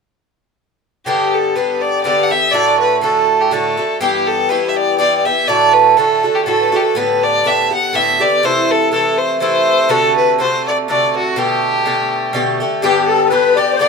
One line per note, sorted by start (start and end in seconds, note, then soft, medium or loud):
1.06 1.54 G2 medium
1.06 1.56 D3 medium
1.06 1.56 B3 medium
1.06 1.36 G4 medium
1.06 1.56 G4 medium
1.34 1.57 A4 medium
1.56 2.03 G2 soft
1.56 2.04 D3 soft
1.56 2.04 B3 medium
1.56 2.05 G4 soft
1.56 1.83 B4 medium
1.81 2.03 D5 medium
2.04 2.31 G2 medium
2.04 2.31 D3 medium
2.04 2.31 B3 medium
2.04 2.29 G4 medium
2.04 2.25 D5 medium
2.23 2.32 F#5 medium
2.31 2.53 D3 soft
2.31 2.54 B3 soft
2.31 2.54 G4 soft
2.31 2.53 E5 medium
2.51 3.00 A2 medium
2.51 3.01 D3 medium
2.51 3.02 A3 medium
2.51 3.02 F#4 medium
2.51 2.79 D5 medium
2.80 3.01 B4 medium
3.01 3.50 A2 soft
3.01 3.51 D3 soft
3.01 3.51 A3 medium
3.01 3.52 F#4 medium
3.01 3.42 A4 medium
3.41 3.54 G4 medium
3.51 3.78 A2 medium
3.51 3.78 D3 medium
3.51 3.77 A3 medium
3.51 3.76 F#4 medium
3.51 4.00 A4 medium
3.77 4.00 D3 soft
3.77 4.01 A3 soft
3.77 4.01 F#4 soft
4.01 4.48 G2 medium
4.01 4.49 E3 medium
4.01 4.49 B3 medium
4.01 4.28 G4 medium
4.01 4.50 G4 medium
4.27 4.51 A4 medium
4.49 4.97 G2 soft
4.49 4.98 E3 medium
4.49 4.99 B3 medium
4.49 5.00 G4 medium
4.49 4.70 B4 medium
4.69 4.78 E5 soft
4.77 4.98 D5 medium
4.98 5.25 G2 medium
4.98 5.26 E3 medium
4.98 5.25 B3 medium
4.98 5.24 G4 medium
4.98 5.17 D5 medium
5.18 5.27 D5 medium
5.25 5.48 E3 soft
5.25 5.49 B3 soft
5.25 5.48 G4 medium
5.25 5.49 E5 medium
5.48 5.96 A2 medium
5.48 5.97 D3 medium
5.48 5.98 A3 medium
5.48 5.98 F#4 medium
5.48 5.75 D5 medium
5.73 5.89 B4 medium
5.89 5.98 B4 medium
5.97 6.24 A2 soft
5.97 6.24 D3 soft
5.97 6.23 A3 medium
5.97 6.22 F#4 soft
5.97 6.37 A4 medium
6.23 6.46 D3 soft
6.23 6.47 A3 soft
6.23 6.46 F#4 soft
6.35 6.45 G4 medium
6.45 6.73 A2 medium
6.45 6.73 D3 medium
6.45 6.72 A3 medium
6.45 6.71 F#4 medium
6.45 6.61 A4 medium
6.60 6.78 A4 medium
6.60 6.65 B4 soft
6.72 6.95 D3 soft
6.72 6.96 A3 soft
6.72 6.95 F#4 soft
6.76 6.81 G4 medium
6.76 6.98 A4 medium
6.95 7.43 A2 medium
6.95 7.44 D3 medium
6.95 7.44 B3 medium
6.95 7.45 G4 medium
6.95 7.25 B4 medium
7.23 7.49 D5 medium
7.44 7.70 A2 soft
7.44 7.71 D3 soft
7.44 7.70 B3 medium
7.44 7.69 G4 medium
7.44 7.72 E5 medium
7.70 7.93 D3 soft
7.70 7.93 B3 soft
7.70 7.93 G4 soft
7.70 7.97 F#5 medium
7.93 8.19 A2 medium
7.93 8.20 D3 medium
7.93 8.20 B3 medium
7.93 8.18 G4 medium
7.93 8.23 E5 medium
8.20 8.43 D3 soft
8.20 8.43 B3 soft
8.20 8.42 G4 soft
8.20 8.47 D5 medium
8.43 8.90 C3 medium
8.43 8.91 E3 medium
8.43 8.93 A3 medium
8.43 8.92 E4 medium
8.43 8.73 C5 medium
8.71 8.92 A4 medium
8.92 9.39 C3 soft
8.92 9.40 E3 soft
8.92 9.41 A3 soft
8.92 9.41 E4 medium
8.92 9.19 A4 medium
9.18 9.40 C5 medium
9.40 9.88 C3 medium
9.40 9.89 E3 medium
9.40 9.89 A3 medium
9.40 9.90 E4 medium
9.40 9.92 C5 medium
9.89 10.37 C3 medium
9.89 10.39 D3 medium
9.89 10.40 A3 medium
9.89 10.39 F#4 medium
9.89 10.16 A4 medium
10.16 10.37 B4 medium
10.38 10.87 C3 soft
10.38 10.88 D3 medium
10.38 10.88 A3 medium
10.38 10.88 F#4 medium
10.38 10.64 C5 medium
10.68 10.77 D5 medium
10.88 11.36 C3 medium
10.88 11.37 D3 soft
10.88 11.36 A3 medium
10.88 11.37 F#4 medium
10.88 11.13 D5 medium
11.17 11.40 F#4 medium
11.36 11.84 B2 medium
11.36 11.85 D3 medium
11.36 11.85 A3 medium
11.36 11.87 G4 medium
11.36 12.35 G4 medium
11.85 12.32 B2 soft
11.85 12.34 D3 medium
11.85 12.33 A3 medium
11.85 12.34 G4 medium
12.33 12.59 B2 medium
12.33 12.60 D3 medium
12.33 12.60 A3 medium
12.33 12.59 G4 medium
12.60 12.82 D3 soft
12.60 12.83 A3 soft
12.60 12.82 G4 soft
12.82 13.29 G2 medium
12.82 13.31 D3 medium
12.82 13.31 B3 medium
12.82 13.09 G4 medium
12.82 13.06 G4 medium
12.82 13.31 G4 medium
13.07 13.28 A4 medium
13.07 13.32 A4 medium
13.29 13.57 G2 soft
13.29 13.57 D3 medium
13.29 13.57 B3 medium
13.29 13.56 G4 medium
13.29 13.58 B4 medium
13.29 13.57 B4 medium
13.56 13.79 D3 soft
13.56 13.80 B3 soft
13.56 13.80 G4 soft
13.56 13.74 D5 medium
13.56 13.78 D5 medium
13.73 13.79 C5 soft
13.78 13.88 G2 medium
13.78 13.88 D3 medium
13.78 13.88 B3 medium
13.78 13.88 G4 medium
13.78 13.88 D5 medium